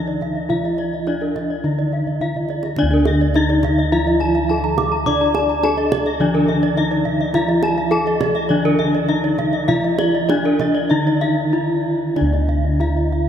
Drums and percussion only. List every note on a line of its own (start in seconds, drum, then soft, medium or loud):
0.21 kendang high soft
0.21 kendang low soft
0.50 kendang low soft
0.64 kendang slap soft
0.78 kendang high soft
1.07 kendang slap soft
1.07 kendang high soft
1.21 kendang slap soft
1.36 kendang slap soft
1.36 kendang high soft
1.36 kendang low soft
1.92 kendang slap soft
2.07 kendang low soft
2.20 kendang low soft
2.35 kendang low soft
2.49 kendang high soft
2.63 kendang high soft
2.76 kendang low medium
2.91 kendang slap soft
3.05 kendang high soft
3.34 kendang high soft
3.49 kendang slap soft
3.63 kendang slap soft
3.63 kendang high medium
3.63 kendang low medium
4.21 kendang slap soft
4.78 kendang high soft
4.78 kendang low medium
5.06 kendang low medium
5.21 kendang slap soft
5.34 kendang high medium
5.63 kendang high medium
5.77 kendang slap soft
5.92 kendang slap soft
5.92 kendang high medium
5.92 kendang low medium
6.49 kendang slap soft
6.49 kendang low soft
7.06 kendang low soft
7.34 kendang low medium
7.48 kendang slap soft
7.63 kendang high soft
7.91 kendang high soft
8.06 kendang slap soft
8.21 kendang slap soft
8.21 kendang high medium
8.21 kendang low medium
8.79 kendang slap soft
8.79 kendang low soft
9.38 kendang high soft
9.38 kendang low medium
9.69 kendang low medium
9.99 kendang slap soft
9.99 kendang high medium
10.29 kendang slap soft
10.29 kendang high medium
10.45 kendang slap soft
10.59 kendang slap soft
10.59 kendang high medium
10.59 kendang low medium
11.22 kendang slap soft
12.16 kendang high soft
12.16 kendang low soft
12.32 kendang slap soft
12.48 kendang low soft
12.81 kendang high soft